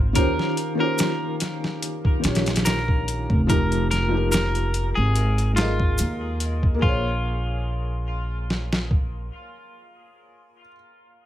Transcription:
0.00 0.12 G#1 loud
0.00 0.17 C#3 medium
0.00 0.10 C4 medium
0.00 0.11 F4 medium
0.00 0.13 F5 medium
0.13 0.35 D#2 medium
0.13 0.73 D#3 loud
0.13 0.73 C#4 medium
0.13 0.74 F4 medium
0.13 0.75 G4 medium
0.13 0.73 A#4 loud
0.13 kick loud
0.13 closed hi-hat medium
0.18 0.75 C5 loud
0.39 snare soft
0.57 closed hi-hat medium
0.75 2.17 D#3 medium
0.75 2.18 C#4 medium
0.80 2.19 F4 medium
0.80 2.20 G4 medium
0.80 1.35 A#4 loud
0.84 2.21 C5 medium
0.98 snare loud
0.98 closed hi-hat medium
0.98 maracas medium
1.40 snare soft
1.40 closed hi-hat medium
1.64 snare soft
1.82 closed hi-hat medium
2.05 kick medium
2.20 3.42 D#3 medium
2.20 3.43 C#4 medium
2.24 3.25 A#1 medium
2.24 3.44 F4 medium
2.24 3.45 G4 medium
2.24 snare medium
2.24 closed hi-hat medium
2.29 3.46 C#5 medium
2.35 snare medium
2.35 closed hi-hat medium
2.46 snare medium
2.46 closed hi-hat medium
2.56 snare medium
2.56 closed hi-hat medium
2.65 3.41 A#4 medium
2.65 snare loud
2.65 closed hi-hat medium
2.65 maracas medium
2.88 kick medium
3.08 closed hi-hat medium
3.30 4.92 F1 medium
3.30 kick loud
3.47 4.06 F3 medium
3.47 4.07 D#4 medium
3.47 4.08 G4 medium
3.47 3.87 A#4 medium
3.47 kick loud
3.47 closed hi-hat medium
3.51 4.08 A#4 loud
3.72 closed hi-hat soft
3.91 4.28 A#4 medium
3.91 snare soft
3.91 closed hi-hat medium
4.08 5.11 F3 medium
4.08 5.12 D#4 medium
4.14 5.14 G4 medium
4.14 5.15 A#4 loud
4.32 4.89 A#4 medium
4.32 snare loud
4.32 closed hi-hat medium
4.32 maracas medium
4.55 closed hi-hat soft
4.74 closed hi-hat medium
4.95 5.95 G#1 medium
4.95 5.51 G#4 medium
5.16 closed hi-hat medium
5.38 closed hi-hat soft
5.53 6.75 G#3 medium
5.53 6.77 F4 medium
5.53 6.66 F4 medium
5.53 closed hi-hat medium
5.58 6.78 A#4 medium
5.58 6.80 D#5 medium
5.58 snare loud
5.80 kick medium
5.98 6.79 D#2 loud
5.98 closed hi-hat medium
5.98 maracas medium
6.40 closed hi-hat medium
6.63 kick loud
6.74 10.61 A#3 medium
6.79 9.28 A#1 medium
6.79 10.69 F4 medium
6.79 10.66 G#4 medium
6.79 kick loud
6.83 10.70 C5 medium
6.88 10.75 C#5 loud
8.50 snare medium
8.73 snare medium
8.91 kick medium

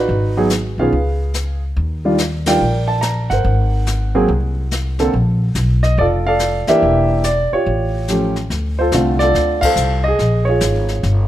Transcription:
0.00 0.36 D#4 medium
0.00 0.75 F#4 medium
0.00 0.47 B4 medium
0.08 0.74 G#1 medium
0.08 brush sweep soft
0.37 0.50 F#3 medium
0.37 0.50 B3 medium
0.37 0.50 D#4 medium
0.37 0.50 G#4 medium
0.50 snare soft
0.50 hi-hat pedal medium
0.78 0.91 B1 medium
0.78 0.92 D#3 medium
0.78 0.92 B3 medium
0.78 0.92 C#4 medium
0.78 0.92 F4 medium
0.78 1.59 G#4 soft
0.78 1.60 B4 medium
0.78 1.59 F5 medium
0.92 1.73 C#2 medium
0.92 brush sweep soft
1.34 snare medium
1.34 hi-hat pedal medium
1.76 2.57 D#2 medium
1.76 brush sweep soft
2.05 2.18 D#3 medium
2.05 2.18 G3 medium
2.05 2.18 D4 medium
2.05 2.18 F4 medium
2.18 snare medium
2.18 hi-hat pedal soft
2.46 2.60 D#3 medium
2.46 2.60 G3 medium
2.46 2.60 D4 medium
2.46 2.60 F4 medium
2.46 3.28 D5 soft
2.46 2.90 G5 medium
2.46 snare medium
2.46 ride medium
2.50 3.28 A#4 medium
2.61 3.26 A#1 medium
2.61 brush sweep soft
2.88 3.02 A5 medium
3.01 3.31 A#5 medium
3.01 snare medium
3.01 hi-hat pedal soft
3.30 3.44 G1 medium
3.30 4.96 A#4 soft
3.30 4.96 C5 soft
3.30 4.95 F#5 medium
3.30 snare soft
3.44 4.25 G#1 medium
3.44 brush sweep soft
3.87 snare soft
3.87 hi-hat pedal soft
4.15 4.28 F#3 medium
4.15 4.28 A#3 medium
4.15 4.28 C4 medium
4.15 4.28 G#4 medium
4.28 5.09 C2 medium
4.28 brush sweep soft
4.71 snare medium
4.71 hi-hat pedal medium
4.99 5.12 D3 medium
4.99 5.13 A#3 medium
4.99 5.13 C4 medium
4.99 5.12 A4 medium
4.99 snare soft
5.13 5.53 A#1 medium
5.13 brush sweep soft
5.55 5.95 B1 medium
5.55 snare medium
5.55 hi-hat pedal medium
5.83 5.98 D#5 medium
5.83 snare soft
5.98 6.64 F1 medium
5.98 6.80 F4 medium
5.98 6.27 A4 medium
5.98 6.05 D5 medium
5.98 brush sweep soft
6.27 6.80 A4 medium
6.27 6.80 D5 medium
6.27 6.65 F5 medium
6.39 snare medium
6.39 hi-hat pedal soft
6.67 7.22 E3 medium
6.67 7.22 A#3 medium
6.67 7.22 D4 medium
6.67 7.22 G4 medium
6.67 7.49 A#4 medium
6.67 7.26 E5 medium
6.67 muted upright bass stroke soft
6.67 snare soft
6.82 7.48 E1 medium
6.82 brush sweep soft
7.24 7.53 D5 medium
7.24 snare soft
7.24 hi-hat pedal soft
7.52 8.33 F4 soft
7.52 8.08 G4 soft
7.52 8.33 C#5 medium
7.52 muted upright bass stroke soft
7.66 8.47 A1 medium
7.66 brush sweep soft
8.08 8.34 F3 soft
8.08 8.34 A3 soft
8.08 8.34 C#4 soft
8.08 8.34 G4 medium
8.08 snare medium
8.08 hi-hat pedal medium
8.36 snare soft
8.50 8.91 D2 medium
8.50 brush sweep soft
8.50 snare soft
8.79 8.93 F4 medium
8.79 9.21 A4 medium
8.79 9.22 C5 medium
8.92 9.33 C2 medium
8.92 9.58 D3 medium
8.92 9.58 A3 medium
8.92 9.58 C4 medium
8.92 9.21 F4 medium
8.92 snare medium
8.92 hi-hat pedal soft
9.19 10.02 F4 medium
9.19 9.63 A4 medium
9.19 9.63 D5 medium
9.19 snare soft
9.34 9.75 D2 medium
9.34 brush sweep soft
9.34 snare soft
9.61 10.17 A4 medium
9.61 10.17 C5 medium
9.61 10.01 F5 loud
9.61 kick medium
9.61 crash medium
9.76 10.17 C2 medium
9.76 hi-hat pedal medium
10.04 10.48 D#5 medium
10.08 10.48 G#4 medium
10.19 10.60 A#1 medium
10.19 brush sweep medium
10.19 snare soft
10.45 11.26 C#5 medium
10.49 11.28 F4 medium
10.49 11.01 G#4 medium
10.60 11.02 G#1 medium
10.60 snare medium
10.60 hi-hat pedal medium
10.88 snare soft
11.03 11.28 G1 medium
11.03 brush sweep soft
11.03 snare soft

